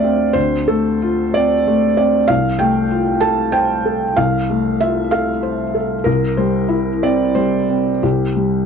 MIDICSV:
0, 0, Header, 1, 2, 480
1, 0, Start_track
1, 0, Tempo, 651466
1, 258, Time_signature, 6, 3, 24, 8
1, 1222, Tempo, 630252
1, 5062, Tempo, 664452
1, 6475, End_track
2, 0, Start_track
2, 0, Title_t, "Felt piano"
2, 0, Program_c, 0, 0
2, 0, Control_c, 0, 64, 127
2, 0, Note_on_c, 0, 38, 40
2, 0, Note_on_c, 0, 57, 31
2, 0, Note_on_c, 0, 60, 39
2, 0, Note_on_c, 0, 65, 40
2, 0, Note_on_c, 0, 72, 55
2, 0, Note_on_c, 0, 74, 64
2, 0, Note_on_c, 0, 76, 77
2, 0, Note_on_c, 0, 77, 58
2, 27, Note_off_c, 0, 60, 0
2, 27, Note_on_c, 0, 60, 31
2, 172, Note_off_c, 0, 57, 0
2, 227, Note_off_c, 0, 38, 0
2, 246, Note_off_c, 0, 72, 0
2, 246, Note_on_c, 0, 72, 70
2, 258, Note_on_c, 0, 38, 40
2, 262, Note_off_c, 0, 74, 0
2, 272, Control_c, 0, 64, 0
2, 277, Note_off_c, 0, 77, 0
2, 279, Note_off_c, 0, 65, 0
2, 279, Note_off_c, 0, 76, 0
2, 394, Control_c, 0, 64, 127
2, 403, Note_off_c, 0, 60, 0
2, 492, Note_off_c, 0, 72, 0
2, 499, Note_on_c, 0, 69, 65
2, 506, Note_on_c, 0, 57, 35
2, 751, Note_on_c, 0, 65, 44
2, 895, Note_off_c, 0, 57, 0
2, 987, Note_on_c, 0, 74, 72
2, 988, Note_off_c, 0, 69, 0
2, 1002, Note_on_c, 0, 60, 38
2, 1133, Note_off_c, 0, 65, 0
2, 1232, Note_on_c, 0, 57, 39
2, 1373, Note_off_c, 0, 60, 0
2, 1449, Note_off_c, 0, 74, 0
2, 1460, Note_on_c, 0, 74, 65
2, 1469, Note_on_c, 0, 60, 32
2, 1608, Note_off_c, 0, 57, 0
2, 1668, Note_off_c, 0, 38, 0
2, 1692, Note_on_c, 0, 77, 73
2, 1699, Note_off_c, 0, 74, 0
2, 1703, Note_off_c, 0, 60, 0
2, 1707, Note_on_c, 0, 36, 43
2, 1713, Control_c, 0, 64, 0
2, 1838, Control_c, 0, 64, 127
2, 1930, Note_on_c, 0, 79, 75
2, 1934, Note_off_c, 0, 77, 0
2, 1938, Note_on_c, 0, 57, 38
2, 2172, Note_on_c, 0, 65, 39
2, 2320, Note_off_c, 0, 57, 0
2, 2400, Note_on_c, 0, 81, 74
2, 2403, Note_on_c, 0, 69, 41
2, 2412, Note_off_c, 0, 79, 0
2, 2556, Note_off_c, 0, 65, 0
2, 2641, Note_on_c, 0, 79, 76
2, 2645, Note_off_c, 0, 81, 0
2, 2646, Note_on_c, 0, 72, 39
2, 2790, Note_off_c, 0, 69, 0
2, 2894, Note_on_c, 0, 69, 36
2, 3031, Note_off_c, 0, 72, 0
2, 3104, Note_off_c, 0, 36, 0
2, 3124, Note_off_c, 0, 79, 0
2, 3131, Note_on_c, 0, 77, 69
2, 3136, Note_on_c, 0, 36, 48
2, 3144, Control_c, 0, 64, 0
2, 3276, Note_off_c, 0, 69, 0
2, 3282, Control_c, 0, 64, 127
2, 3384, Note_on_c, 0, 57, 35
2, 3610, Note_off_c, 0, 77, 0
2, 3619, Note_on_c, 0, 76, 73
2, 3622, Note_on_c, 0, 65, 41
2, 3761, Note_off_c, 0, 57, 0
2, 3852, Note_on_c, 0, 77, 64
2, 3855, Note_off_c, 0, 76, 0
2, 3858, Note_on_c, 0, 69, 38
2, 4001, Note_off_c, 0, 65, 0
2, 4092, Note_on_c, 0, 72, 37
2, 4240, Note_off_c, 0, 69, 0
2, 4334, Note_off_c, 0, 77, 0
2, 4334, Note_on_c, 0, 69, 31
2, 4479, Note_off_c, 0, 72, 0
2, 4548, Note_off_c, 0, 36, 0
2, 4560, Note_on_c, 0, 70, 62
2, 4573, Note_on_c, 0, 36, 45
2, 4576, Note_off_c, 0, 69, 0
2, 4590, Control_c, 0, 64, 0
2, 4698, Control_c, 0, 64, 127
2, 4811, Note_off_c, 0, 70, 0
2, 4813, Note_on_c, 0, 72, 51
2, 4817, Note_on_c, 0, 55, 35
2, 5050, Note_on_c, 0, 64, 40
2, 5203, Note_off_c, 0, 55, 0
2, 5295, Note_off_c, 0, 72, 0
2, 5300, Note_on_c, 0, 60, 35
2, 5300, Note_on_c, 0, 74, 65
2, 5434, Note_off_c, 0, 64, 0
2, 5531, Note_on_c, 0, 72, 63
2, 5536, Note_on_c, 0, 55, 29
2, 5538, Note_off_c, 0, 74, 0
2, 5683, Note_off_c, 0, 60, 0
2, 5781, Note_on_c, 0, 60, 24
2, 5924, Note_off_c, 0, 55, 0
2, 5991, Note_off_c, 0, 36, 0
2, 6018, Note_off_c, 0, 72, 0
2, 6021, Note_on_c, 0, 67, 45
2, 6024, Note_on_c, 0, 36, 37
2, 6034, Control_c, 0, 64, 0
2, 6168, Note_off_c, 0, 60, 0
2, 6168, Control_c, 0, 64, 127
2, 6261, Note_on_c, 0, 55, 29
2, 6475, Note_off_c, 0, 36, 0
2, 6475, Note_off_c, 0, 55, 0
2, 6475, Note_off_c, 0, 67, 0
2, 6475, End_track
0, 0, End_of_file